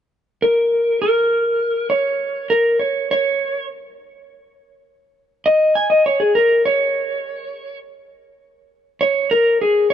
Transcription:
0, 0, Header, 1, 2, 480
1, 0, Start_track
1, 0, Tempo, 590551
1, 318, Time_signature, 12, 3, 24, 8
1, 8076, End_track
2, 0, Start_track
2, 0, Title_t, "Electric slide guitar"
2, 0, Program_c, 0, 29
2, 344, Note_on_c, 0, 70, 62
2, 798, Note_off_c, 0, 70, 0
2, 826, Note_on_c, 0, 70, 56
2, 1513, Note_off_c, 0, 70, 0
2, 1542, Note_on_c, 0, 73, 61
2, 1998, Note_off_c, 0, 73, 0
2, 2032, Note_on_c, 0, 70, 64
2, 2250, Note_off_c, 0, 70, 0
2, 2271, Note_on_c, 0, 73, 53
2, 2490, Note_off_c, 0, 73, 0
2, 2529, Note_on_c, 0, 73, 66
2, 2972, Note_off_c, 0, 73, 0
2, 4436, Note_on_c, 0, 75, 76
2, 4653, Note_off_c, 0, 75, 0
2, 4677, Note_on_c, 0, 80, 66
2, 4777, Note_off_c, 0, 80, 0
2, 4795, Note_on_c, 0, 75, 68
2, 4896, Note_off_c, 0, 75, 0
2, 4926, Note_on_c, 0, 73, 71
2, 5021, Note_off_c, 0, 73, 0
2, 5038, Note_on_c, 0, 68, 67
2, 5137, Note_off_c, 0, 68, 0
2, 5162, Note_on_c, 0, 70, 65
2, 5376, Note_off_c, 0, 70, 0
2, 5409, Note_on_c, 0, 73, 80
2, 6317, Note_off_c, 0, 73, 0
2, 7322, Note_on_c, 0, 73, 74
2, 7534, Note_off_c, 0, 73, 0
2, 7568, Note_on_c, 0, 70, 76
2, 7777, Note_off_c, 0, 70, 0
2, 7815, Note_on_c, 0, 68, 66
2, 8020, Note_off_c, 0, 68, 0
2, 8049, Note_on_c, 0, 73, 78
2, 8076, Note_off_c, 0, 73, 0
2, 8076, End_track
0, 0, End_of_file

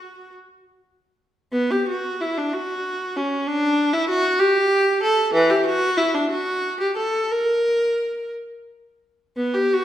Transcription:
0, 0, Header, 1, 2, 480
1, 0, Start_track
1, 0, Tempo, 735294
1, 467, Tempo, 802139
1, 947, Time_signature, 6, 3, 24, 8
1, 947, Tempo, 692841
1, 1427, Tempo, 626305
1, 3827, Tempo, 643777
1, 4787, Tempo, 672646
1, 6227, Tempo, 722022
1, 7024, End_track
2, 0, Start_track
2, 0, Title_t, "Viola"
2, 0, Program_c, 0, 41
2, 0, Note_on_c, 0, 66, 80
2, 217, Note_off_c, 0, 66, 0
2, 949, Note_on_c, 0, 59, 89
2, 1072, Note_off_c, 0, 59, 0
2, 1081, Note_on_c, 0, 67, 80
2, 1199, Note_off_c, 0, 67, 0
2, 1200, Note_on_c, 0, 66, 80
2, 1425, Note_off_c, 0, 66, 0
2, 1426, Note_on_c, 0, 64, 75
2, 1550, Note_off_c, 0, 64, 0
2, 1559, Note_on_c, 0, 62, 74
2, 1677, Note_off_c, 0, 62, 0
2, 1677, Note_on_c, 0, 66, 86
2, 2154, Note_off_c, 0, 66, 0
2, 2160, Note_on_c, 0, 61, 82
2, 2392, Note_off_c, 0, 61, 0
2, 2392, Note_on_c, 0, 62, 99
2, 2747, Note_off_c, 0, 62, 0
2, 2747, Note_on_c, 0, 64, 88
2, 2866, Note_off_c, 0, 64, 0
2, 2867, Note_on_c, 0, 66, 105
2, 3098, Note_on_c, 0, 67, 109
2, 3103, Note_off_c, 0, 66, 0
2, 3582, Note_off_c, 0, 67, 0
2, 3586, Note_on_c, 0, 69, 101
2, 3821, Note_off_c, 0, 69, 0
2, 3824, Note_on_c, 0, 52, 110
2, 3940, Note_off_c, 0, 52, 0
2, 3946, Note_on_c, 0, 67, 90
2, 4062, Note_off_c, 0, 67, 0
2, 4067, Note_on_c, 0, 66, 109
2, 4297, Note_off_c, 0, 66, 0
2, 4299, Note_on_c, 0, 64, 94
2, 4419, Note_off_c, 0, 64, 0
2, 4425, Note_on_c, 0, 62, 83
2, 4543, Note_off_c, 0, 62, 0
2, 4546, Note_on_c, 0, 66, 91
2, 4899, Note_off_c, 0, 66, 0
2, 4910, Note_on_c, 0, 67, 83
2, 5023, Note_off_c, 0, 67, 0
2, 5031, Note_on_c, 0, 69, 88
2, 5261, Note_off_c, 0, 69, 0
2, 5274, Note_on_c, 0, 70, 91
2, 5990, Note_off_c, 0, 70, 0
2, 6706, Note_on_c, 0, 59, 93
2, 6821, Note_on_c, 0, 67, 89
2, 6826, Note_off_c, 0, 59, 0
2, 6944, Note_off_c, 0, 67, 0
2, 6948, Note_on_c, 0, 66, 96
2, 7024, Note_off_c, 0, 66, 0
2, 7024, End_track
0, 0, End_of_file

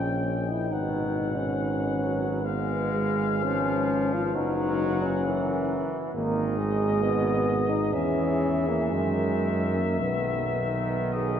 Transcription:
0, 0, Header, 1, 6, 480
1, 0, Start_track
1, 0, Tempo, 859599
1, 1371, Time_signature, 4, 2, 24, 8
1, 1371, Tempo, 996678
1, 1851, Tempo, 914634
1, 2331, Tempo, 894188
1, 4251, Tempo, 993377
1, 4731, Tempo, 1098901
1, 5806, End_track
2, 0, Start_track
2, 0, Title_t, "Flugelhorn"
2, 0, Program_c, 0, 56
2, 0, Note_on_c, 0, 79, 62
2, 402, Note_on_c, 0, 78, 58
2, 410, Note_off_c, 0, 79, 0
2, 1367, Note_on_c, 0, 77, 69
2, 1374, Note_off_c, 0, 78, 0
2, 2327, Note_off_c, 0, 77, 0
2, 2330, Note_on_c, 0, 78, 70
2, 3128, Note_off_c, 0, 78, 0
2, 3290, Note_on_c, 0, 75, 69
2, 4245, Note_on_c, 0, 76, 68
2, 4253, Note_off_c, 0, 75, 0
2, 5686, Note_on_c, 0, 75, 72
2, 5693, Note_off_c, 0, 76, 0
2, 5806, Note_off_c, 0, 75, 0
2, 5806, End_track
3, 0, Start_track
3, 0, Title_t, "French horn section"
3, 0, Program_c, 1, 60
3, 0, Note_on_c, 1, 75, 55
3, 381, Note_off_c, 1, 75, 0
3, 402, Note_on_c, 1, 71, 64
3, 2812, Note_off_c, 1, 71, 0
3, 2812, Note_on_c, 1, 70, 76
3, 3208, Note_off_c, 1, 70, 0
3, 3299, Note_on_c, 1, 68, 69
3, 4714, Note_off_c, 1, 68, 0
3, 4737, Note_on_c, 1, 70, 73
3, 5203, Note_off_c, 1, 70, 0
3, 5203, Note_on_c, 1, 71, 63
3, 5633, Note_off_c, 1, 71, 0
3, 5697, Note_on_c, 1, 68, 87
3, 5806, Note_off_c, 1, 68, 0
3, 5806, End_track
4, 0, Start_track
4, 0, Title_t, "Euphonium"
4, 0, Program_c, 2, 58
4, 0, Note_on_c, 2, 61, 86
4, 284, Note_on_c, 2, 64, 80
4, 293, Note_off_c, 2, 61, 0
4, 396, Note_on_c, 2, 63, 79
4, 404, Note_off_c, 2, 64, 0
4, 757, Note_on_c, 2, 61, 80
4, 765, Note_off_c, 2, 63, 0
4, 1359, Note_off_c, 2, 61, 0
4, 1362, Note_on_c, 2, 59, 77
4, 1596, Note_off_c, 2, 59, 0
4, 1599, Note_on_c, 2, 56, 90
4, 1843, Note_on_c, 2, 61, 100
4, 1850, Note_off_c, 2, 56, 0
4, 2211, Note_on_c, 2, 65, 88
4, 2219, Note_off_c, 2, 61, 0
4, 2325, Note_on_c, 2, 63, 104
4, 2332, Note_off_c, 2, 65, 0
4, 2686, Note_on_c, 2, 61, 91
4, 2694, Note_off_c, 2, 63, 0
4, 3142, Note_off_c, 2, 61, 0
4, 3283, Note_on_c, 2, 58, 100
4, 3518, Note_on_c, 2, 56, 85
4, 3526, Note_off_c, 2, 58, 0
4, 3756, Note_on_c, 2, 59, 100
4, 3764, Note_off_c, 2, 56, 0
4, 4117, Note_on_c, 2, 63, 88
4, 4125, Note_off_c, 2, 59, 0
4, 4249, Note_on_c, 2, 61, 97
4, 4257, Note_off_c, 2, 63, 0
4, 4606, Note_on_c, 2, 58, 83
4, 4613, Note_off_c, 2, 61, 0
4, 4727, Note_on_c, 2, 56, 88
4, 4734, Note_off_c, 2, 58, 0
4, 5085, Note_on_c, 2, 58, 81
4, 5091, Note_off_c, 2, 56, 0
4, 5204, Note_on_c, 2, 59, 80
4, 5210, Note_off_c, 2, 58, 0
4, 5806, Note_off_c, 2, 59, 0
4, 5806, End_track
5, 0, Start_track
5, 0, Title_t, "Trombone"
5, 0, Program_c, 3, 57
5, 0, Note_on_c, 3, 49, 65
5, 258, Note_off_c, 3, 49, 0
5, 398, Note_on_c, 3, 47, 78
5, 877, Note_on_c, 3, 51, 66
5, 886, Note_off_c, 3, 47, 0
5, 1109, Note_on_c, 3, 54, 73
5, 1118, Note_off_c, 3, 51, 0
5, 1357, Note_off_c, 3, 54, 0
5, 1361, Note_on_c, 3, 56, 85
5, 1842, Note_on_c, 3, 53, 81
5, 1849, Note_off_c, 3, 56, 0
5, 2324, Note_on_c, 3, 54, 90
5, 2332, Note_off_c, 3, 53, 0
5, 2808, Note_on_c, 3, 52, 83
5, 2816, Note_off_c, 3, 54, 0
5, 3286, Note_off_c, 3, 52, 0
5, 3289, Note_on_c, 3, 51, 80
5, 3760, Note_on_c, 3, 47, 74
5, 3768, Note_off_c, 3, 51, 0
5, 4092, Note_off_c, 3, 47, 0
5, 4246, Note_on_c, 3, 52, 86
5, 4731, Note_on_c, 3, 51, 89
5, 4738, Note_off_c, 3, 52, 0
5, 5199, Note_off_c, 3, 51, 0
5, 5201, Note_on_c, 3, 51, 85
5, 5806, Note_off_c, 3, 51, 0
5, 5806, End_track
6, 0, Start_track
6, 0, Title_t, "Tuba"
6, 0, Program_c, 4, 58
6, 0, Note_on_c, 4, 34, 64
6, 395, Note_on_c, 4, 32, 64
6, 404, Note_off_c, 4, 34, 0
6, 2322, Note_on_c, 4, 30, 74
6, 2330, Note_off_c, 4, 32, 0
6, 3140, Note_off_c, 4, 30, 0
6, 3281, Note_on_c, 4, 32, 72
6, 4244, Note_on_c, 4, 40, 65
6, 4252, Note_off_c, 4, 32, 0
6, 4724, Note_on_c, 4, 42, 73
6, 4731, Note_off_c, 4, 40, 0
6, 5196, Note_on_c, 4, 35, 70
6, 5202, Note_off_c, 4, 42, 0
6, 5806, Note_off_c, 4, 35, 0
6, 5806, End_track
0, 0, End_of_file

